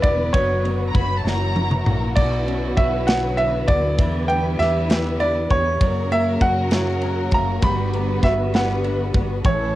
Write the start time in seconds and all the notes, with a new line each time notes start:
Already playing: D3 E3 G3 B3 D4 E4 G4 B4
0.03 E1 B3 D5, kick, ride
0.33 F#1 F#3 F#4 C#5, kick, ride
0.64 B3, ride
0.88 A#5
0.94 F#1 F#4 B5, kick, ride
1.18 A5
1.24 F#1 F#2 E3 A#3 E4 A#4 A#5, snare
1.56 E4, high tom
1.71 mid tom
1.86 A#1 A#3, mid tom
2.15 B1 B2 D3 B3 B4 D5, kick, crash
2.46 C#4, ride
2.77 B1 F#4 E5, kick, ride
3.07 F#3 F#5, snare, ride
3.37 D4 E5, ride
3.68 D2 D5, kick, ride
3.98 E2 E3 G3 E4 B4, kick, ride
4.28 B3 G5, ride
4.59 E2 G4 E5, snare, ride
4.90 B3, snare, ride
5.20 D4 D5, ride
5.50 E2 B3 C#5, kick, ride
5.80 F#2 C#3 F#3 A#3 F#4 A#4, kick, ride
6.11 A#3 E5, ride
6.41 F#2 F#4 F#5, kick, ride
6.71 F#3, snare, ride
7.02 C#4, ride
7.31 F#1 A#3 A#5, kick, ride
7.62 G1 D3 G3 B3 B4 B5, kick, ride
7.94 B3, ride
8.23 G1 F#4 E5, kick, snare, ride
8.54 B3 F#5, snare, ride
8.84 D4, ride
9.14 G1 B3, kick, ride
9.44 A1 A2 C#3 E3 A3 E4 A4 C#5, kick, ride